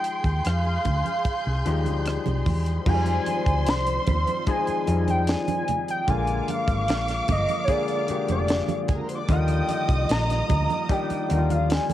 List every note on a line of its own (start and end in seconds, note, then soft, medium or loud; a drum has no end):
0.00 0.53 F3 medium
0.00 0.53 G#3 medium
0.00 0.53 D#4 medium
0.00 0.53 G#4 medium
0.00 2.82 G#4 medium
0.00 0.48 G5 loud
0.00 2.82 C6 medium
0.00 2.82 G6 medium
0.04 closed hi-hat medium
0.24 0.40 D#2 medium
0.24 kick medium
0.24 closed hi-hat soft
0.45 0.76 F2 medium
0.45 2.47 F5 loud
0.45 cross-stick loud
0.45 closed hi-hat loud
0.45 muted conga soft
0.65 muted conga soft
0.85 1.01 D2 medium
0.85 kick medium
0.85 closed hi-hat medium
0.85 high conga medium
0.85 low conga medium
1.05 closed hi-hat soft
1.05 high conga medium
1.25 kick medium
1.25 closed hi-hat medium
1.25 muted conga soft
1.46 1.62 C2 medium
1.46 muted conga soft
1.65 1.86 D#2 medium
1.65 2.40 F3 medium
1.65 1.73 G3 medium
1.65 2.41 D#4 medium
1.65 2.41 G4 medium
1.65 closed hi-hat medium
1.72 2.44 G#3 medium
1.86 2.17 D2 medium
1.86 closed hi-hat soft
1.86 high conga medium
2.06 cross-stick loud
2.06 closed hi-hat medium
2.06 muted conga soft
2.26 2.42 C2 medium
2.26 closed hi-hat soft
2.26 muted conga soft
2.26 high conga medium
2.46 2.77 E2 medium
2.46 kick medium
2.46 open hi-hat medium
2.46 low conga medium
2.66 closed hi-hat medium
2.86 3.18 F2 loud
2.86 6.05 D#3 medium
2.86 6.04 F3 medium
2.86 3.86 F3 medium
2.86 3.86 G#3 medium
2.86 6.04 C4 medium
2.86 3.86 D#4 medium
2.86 9.25 F4 medium
2.86 2.93 F#4 medium
2.86 5.64 C5 medium
2.86 3.71 G#5 loud
2.86 5.64 C6 loud
2.86 kick loud
2.86 crash medium
2.86 muted conga soft
2.86 low conga medium
2.94 3.90 G3 medium
3.06 closed hi-hat soft
3.06 muted conga soft
3.26 closed hi-hat medium
3.26 high conga medium
3.46 3.67 D2 medium
3.46 kick medium
3.46 closed hi-hat soft
3.66 3.98 C2 medium
3.66 4.51 C6 loud
3.66 snare loud
3.66 closed hi-hat loud
3.66 muted conga soft
3.87 closed hi-hat medium
3.87 muted conga soft
4.07 4.23 D#2 medium
4.07 kick medium
4.07 closed hi-hat medium
4.07 high conga medium
4.07 low conga medium
4.27 closed hi-hat soft
4.27 high conga medium
4.47 4.72 F3 medium
4.47 4.72 G#3 medium
4.47 4.72 D#4 medium
4.47 4.72 G#4 medium
4.47 5.08 G#5 loud
4.47 kick medium
4.47 closed hi-hat medium
4.47 muted conga soft
4.67 muted fingered electric bass stroke soft
4.67 closed hi-hat soft
4.86 5.34 F2 medium
4.86 5.61 F3 medium
4.86 5.62 G3 medium
4.86 5.62 G#3 medium
4.86 5.62 D#4 medium
4.86 closed hi-hat medium
5.08 5.31 G5 medium
5.08 closed hi-hat soft
5.08 high conga medium
5.27 5.89 G#5 loud
5.27 snare loud
5.27 closed hi-hat loud
5.48 closed hi-hat medium
5.48 muted conga soft
5.48 high conga medium
5.68 closed hi-hat medium
5.68 low conga medium
5.88 6.08 G5 medium
5.88 closed hi-hat medium
6.07 6.39 A#1 loud
6.07 7.07 D3 medium
6.07 9.26 D3 medium
6.07 9.26 F3 medium
6.07 7.07 G#3 medium
6.07 7.08 A#3 medium
6.07 11.93 A#3 medium
6.07 7.08 F4 medium
6.07 8.77 F5 medium
6.07 6.52 G#5 medium
6.07 8.77 D6 loud
6.07 kick loud
6.07 closed hi-hat medium
6.07 muted conga soft
6.07 low conga medium
6.27 closed hi-hat soft
6.27 muted conga soft
6.48 7.29 F5 loud
6.48 closed hi-hat medium
6.48 high conga medium
6.68 6.89 G#1 medium
6.68 kick loud
6.68 closed hi-hat soft
6.88 7.20 A#1 medium
6.88 snare loud
6.88 closed hi-hat loud
6.88 muted conga soft
7.08 snare soft
7.08 closed hi-hat medium
7.28 7.44 G1 medium
7.28 7.61 D#5 medium
7.28 kick medium
7.28 closed hi-hat medium
7.28 high conga medium
7.28 low conga medium
7.49 closed hi-hat soft
7.49 high conga medium
7.64 7.93 D3 medium
7.64 7.93 G#3 medium
7.64 7.72 C#5 medium
7.64 closed hi-hat medium
7.68 7.93 A#3 medium
7.68 7.93 G#4 medium
7.68 8.30 D5 medium
7.68 kick medium
7.68 muted conga soft
7.88 closed hi-hat soft
7.88 muted conga soft
8.08 8.83 D3 medium
8.08 8.83 G#3 medium
8.08 8.83 A#3 medium
8.08 8.84 G4 medium
8.08 muted fingered electric bass stroke soft
8.08 closed hi-hat medium
8.28 8.60 F1 medium
8.28 8.86 D5 medium
8.28 closed hi-hat soft
8.28 high conga medium
8.48 snare loud
8.48 closed hi-hat loud
8.48 muted conga soft
8.68 closed hi-hat soft
8.68 muted conga soft
8.68 high conga medium
8.88 8.99 G#4 medium
8.88 8.99 G#5 medium
8.88 kick loud
8.88 closed hi-hat medium
8.88 low conga medium
8.98 9.08 A#4 medium
8.98 9.08 A#5 medium
9.08 9.18 C5 medium
9.08 9.18 C6 medium
9.08 closed hi-hat medium
9.18 9.28 D5 medium
9.18 9.28 D6 medium
9.27 9.60 D#2 loud
9.27 10.29 D3 medium
9.27 10.29 D#3 medium
9.27 11.93 F3 medium
9.27 11.93 G3 medium
9.27 10.29 G3 medium
9.27 11.93 F4 medium
9.27 10.29 F4 medium
9.27 11.66 D#5 loud
9.27 10.06 G5 medium
9.27 11.66 D#6 loud
9.27 kick loud
9.27 closed hi-hat medium
9.27 muted conga soft
9.27 low conga medium
9.48 closed hi-hat medium
9.48 muted conga soft
9.69 closed hi-hat medium
9.69 high conga medium
9.89 10.05 C2 medium
9.89 kick loud
9.89 closed hi-hat medium
10.09 10.41 A#1 medium
10.09 10.93 A#5 loud
10.09 snare loud
10.09 closed hi-hat loud
10.30 snare soft
10.30 closed hi-hat medium
10.49 10.65 D2 medium
10.49 kick medium
10.49 closed hi-hat medium
10.49 high conga medium
10.49 low conga medium
10.70 closed hi-hat soft
10.70 high conga medium
10.89 11.14 D#3 medium
10.89 11.14 G3 medium
10.89 11.15 D4 medium
10.89 11.15 G4 medium
10.89 11.52 G5 medium
10.89 kick loud
10.89 closed hi-hat medium
11.10 muted fingered electric bass stroke medium
11.10 closed hi-hat soft
11.10 muted conga soft
11.29 11.77 D#2 medium
11.29 11.93 D3 medium
11.29 11.93 D#3 medium
11.29 11.93 G3 medium
11.29 11.37 D#4 medium
11.29 closed hi-hat medium
11.37 11.93 F4 medium
11.50 11.72 F5 medium
11.50 closed hi-hat medium
11.50 high conga medium
11.70 11.93 G#5 loud
11.70 snare loud
11.70 closed hi-hat loud
11.70 muted conga soft
11.90 muted conga soft
11.90 high conga medium